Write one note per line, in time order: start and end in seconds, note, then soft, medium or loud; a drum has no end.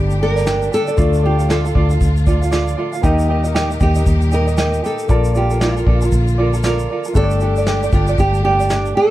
0.00 0.68 G1 loud
0.00 0.96 A2 medium
0.00 3.00 D3 medium
0.00 0.93 G3 medium
0.00 0.96 G3 medium
0.00 0.20 D4 soft
0.00 0.94 D4 medium
0.00 3.00 D4 medium
0.00 0.22 G4 loud
0.00 0.94 G4 medium
0.00 0.96 G4 medium
0.00 0.21 A4 medium
0.00 0.21 D5 medium
0.00 0.95 D5 medium
0.11 shaker soft
0.21 0.36 D4 medium
0.21 0.36 G4 medium
0.21 0.35 A4 medium
0.21 0.74 A#4 loud
0.21 0.34 D5 medium
0.36 0.45 D4 soft
0.36 0.46 A4 medium
0.36 0.46 D5 medium
0.36 snare soft
0.36 shaker medium
0.46 0.71 D4 medium
0.46 0.70 G4 medium
0.46 0.72 A4 medium
0.46 0.72 D5 medium
0.46 snare loud
0.46 shaker medium
0.62 shaker medium
0.71 0.88 D4 medium
0.71 0.87 G4 medium
0.71 0.87 A4 medium
0.71 1.25 A4 loud
0.71 0.86 D5 medium
0.71 shaker medium
0.87 0.97 D4 soft
0.87 0.97 A4 medium
0.87 0.96 D5 medium
0.87 shaker medium
0.97 1.71 D2 loud
0.97 3.02 A2 medium
0.97 3.02 F3 medium
0.97 2.99 A3 medium
0.97 3.00 D4 medium
0.97 1.23 F4 medium
0.97 3.02 F4 medium
0.97 3.00 F4 medium
0.97 1.23 A4 medium
0.97 1.22 D5 medium
0.97 3.01 D5 medium
0.97 1.24 F5 loud
0.97 kick loud
0.97 shaker medium
1.13 shaker medium
1.23 1.39 F4 medium
1.23 1.50 G4 medium
1.23 1.38 A4 medium
1.23 1.39 D5 medium
1.23 1.37 F5 medium
1.38 1.48 F4 soft
1.38 1.49 A4 medium
1.38 1.49 F5 medium
1.38 shaker medium
1.49 1.65 F4 medium
1.49 1.64 A4 medium
1.49 2.75 A4 medium
1.49 1.65 D5 medium
1.49 1.63 F5 loud
1.49 snare loud
1.49 shaker medium
1.65 1.75 F4 soft
1.65 1.75 A4 soft
1.65 1.75 F5 medium
1.65 shaker medium
1.75 1.99 D2 loud
1.75 1.91 F4 medium
1.75 1.91 A4 medium
1.75 1.90 D5 medium
1.75 1.90 F5 medium
1.75 kick loud
1.90 2.26 F4 soft
1.90 2.27 A4 soft
1.90 2.27 F5 medium
1.90 shaker medium
2.01 2.74 D2 loud
2.01 kick medium
2.01 shaker medium
2.17 shaker soft
2.27 2.42 F4 medium
2.27 2.41 A4 medium
2.27 2.42 D5 medium
2.27 2.40 F5 medium
2.27 kick loud
2.27 shaker medium
2.41 2.51 F4 medium
2.41 2.51 A4 soft
2.41 2.51 F5 medium
2.41 shaker medium
2.51 2.77 F4 medium
2.51 2.77 A4 medium
2.51 2.76 D5 medium
2.51 2.78 F5 medium
2.51 snare loud
2.51 shaker medium
2.68 shaker medium
2.77 2.93 F4 medium
2.77 2.92 A4 medium
2.77 2.93 D5 medium
2.77 2.91 F5 medium
2.92 3.03 F4 medium
2.92 3.03 A4 soft
2.92 3.03 F5 medium
2.92 shaker medium
3.02 3.77 D#2 loud
3.02 5.08 A#2 medium
3.02 5.08 D#3 medium
3.02 5.08 G3 medium
3.02 5.05 A#3 medium
3.02 5.05 D#4 medium
3.02 3.28 D#4 loud
3.02 5.08 D#4 medium
3.02 3.27 G4 loud
3.02 5.08 G4 loud
3.02 5.06 G4 medium
3.02 3.29 A#4 loud
3.02 3.29 D#5 loud
3.02 kick loud
3.02 shaker medium
3.06 5.07 D#5 medium
3.19 shaker medium
3.29 3.45 D#4 medium
3.29 3.44 G4 medium
3.29 3.44 A#4 medium
3.29 3.43 D#5 medium
3.44 3.54 D#4 medium
3.44 3.54 A#4 medium
3.44 3.55 D#5 medium
3.44 shaker medium
3.54 3.70 D#4 medium
3.54 3.70 G4 medium
3.54 3.70 A#4 medium
3.54 3.69 D#5 loud
3.54 snare loud
3.54 shaker medium
3.70 3.80 D#4 soft
3.70 3.80 A#4 soft
3.70 3.81 D#5 medium
3.70 shaker medium
3.80 4.05 D#2 loud
3.80 3.96 D#4 medium
3.80 3.96 G4 medium
3.80 4.34 G4 medium
3.80 3.96 A#4 medium
3.80 3.95 D#5 medium
3.80 kick medium
3.80 shaker medium
3.95 4.31 D#4 soft
3.95 4.32 A#4 medium
3.95 4.32 D#5 medium
3.95 shaker medium
4.06 4.80 D#2 loud
4.06 kick medium
4.06 shaker medium
4.21 shaker medium
4.32 4.48 D#4 medium
4.32 4.47 G4 medium
4.32 4.47 A#4 medium
4.32 4.85 A#4 medium
4.32 4.46 D#5 medium
4.32 shaker medium
4.47 4.57 D#4 soft
4.47 4.57 A#4 soft
4.47 4.58 D#5 medium
4.47 shaker medium
4.57 4.83 D#4 medium
4.57 4.82 G4 medium
4.57 4.83 A#4 medium
4.57 4.84 D#5 loud
4.57 snare loud
4.57 shaker medium
4.74 shaker medium
4.83 5.09 D#4 medium
4.83 5.08 G4 medium
4.83 5.37 A4 loud
4.83 5.09 A#4 medium
4.83 5.10 D#5 medium
4.83 shaker medium
4.99 shaker medium
5.08 5.83 A#1 loud
5.08 7.14 D3 medium
5.08 7.14 F3 medium
5.08 7.11 A#3 medium
5.08 7.14 A#3 medium
5.08 7.11 F4 medium
5.08 5.34 F4 medium
5.08 7.14 F4 medium
5.08 5.35 A4 medium
5.08 5.35 A#4 medium
5.08 5.33 D5 medium
5.08 7.13 D5 medium
5.08 7.12 A5 medium
5.08 kick loud
5.08 shaker medium
5.24 shaker medium
5.34 5.51 F4 medium
5.34 5.63 G4 medium
5.34 5.49 A4 medium
5.34 5.50 A#4 medium
5.34 5.50 D5 medium
5.34 shaker medium
5.50 5.60 F4 soft
5.50 5.61 A4 medium
5.50 5.61 A#4 medium
5.50 shaker medium
5.60 5.77 F4 medium
5.60 6.68 F4 medium
5.60 5.75 A4 loud
5.60 5.76 A#4 loud
5.60 5.76 D5 medium
5.60 snare loud
5.60 shaker medium
5.76 5.86 F4 soft
5.76 5.87 A4 medium
5.76 5.86 A#4 medium
5.76 shaker medium
5.86 6.11 A#1 loud
5.86 6.02 F4 medium
5.86 6.01 A4 medium
5.86 6.02 A#4 medium
5.86 6.02 D5 medium
5.86 kick medium
6.01 6.37 F4 soft
6.01 6.38 A4 medium
6.01 6.38 A#4 medium
6.01 shaker medium
6.12 6.86 A#1 loud
6.12 kick medium
6.12 shaker medium
6.28 shaker medium
6.38 6.54 F4 medium
6.38 6.52 A4 medium
6.38 6.53 A#4 medium
6.38 6.54 D5 medium
6.53 6.63 F4 soft
6.53 6.64 A4 medium
6.53 6.64 A#4 soft
6.53 shaker medium
6.63 6.90 F4 medium
6.63 6.90 A4 medium
6.63 6.90 A#4 medium
6.63 7.13 A#4 medium
6.63 6.89 D5 medium
6.63 snare loud
6.63 shaker medium
6.79 shaker medium
6.90 7.06 F4 medium
6.90 7.04 A4 medium
6.90 7.05 A#4 medium
6.90 7.05 D5 medium
7.04 7.16 F4 soft
7.04 7.16 A4 soft
7.04 7.15 A#4 medium
7.04 shaker medium
7.14 7.89 G1 loud
7.14 9.10 A2 medium
7.14 9.10 D3 medium
7.14 9.10 G3 medium
7.14 9.10 A3 medium
7.14 9.10 D4 medium
7.14 7.41 D4 medium
7.14 9.10 G4 loud
7.14 7.41 G4 medium
7.14 9.10 G4 medium
7.14 7.95 A4 loud
7.14 7.42 A4 medium
7.14 7.41 D5 medium
7.14 kick loud
7.14 shaker medium
7.18 7.24 C#5 medium
7.24 9.10 D5 medium
7.30 shaker medium
7.40 7.57 D4 medium
7.40 7.57 G4 medium
7.40 7.58 A4 medium
7.40 7.56 D5 medium
7.40 shaker medium
7.56 7.67 D4 soft
7.56 7.67 A4 medium
7.56 7.67 D5 medium
7.56 shaker medium
7.67 7.83 D4 medium
7.67 7.83 G4 medium
7.67 7.83 A4 medium
7.67 7.82 D5 medium
7.67 snare loud
7.67 shaker medium
7.83 7.92 D4 soft
7.83 7.93 A4 medium
7.83 7.93 D5 medium
7.83 shaker medium
7.92 8.17 G1 medium
7.92 8.09 D4 medium
7.92 8.20 F4 medium
7.92 8.08 G4 medium
7.92 8.09 A4 medium
7.92 8.07 D5 medium
7.92 kick loud
7.92 shaker medium
8.07 8.44 D4 soft
8.07 8.44 A4 medium
8.07 8.44 D5 medium
8.07 shaker medium
8.18 8.92 G1 loud
8.18 8.44 G4 medium
8.18 kick medium
8.18 shaker medium
8.34 shaker soft
8.44 8.60 D4 medium
8.44 8.59 G4 medium
8.44 8.96 G4 loud
8.44 8.59 A4 medium
8.44 8.58 D5 medium
8.59 8.69 D4 soft
8.59 8.69 A4 soft
8.59 8.69 D5 medium
8.59 shaker medium
8.69 8.95 D4 medium
8.69 8.94 G4 medium
8.69 8.95 A4 medium
8.69 8.96 D5 medium
8.69 snare loud
8.69 shaker medium
8.86 shaker medium
8.95 9.10 D4 medium
8.95 9.10 G4 medium
8.95 9.10 A4 medium
8.95 9.10 A4 loud
8.95 9.10 D5 medium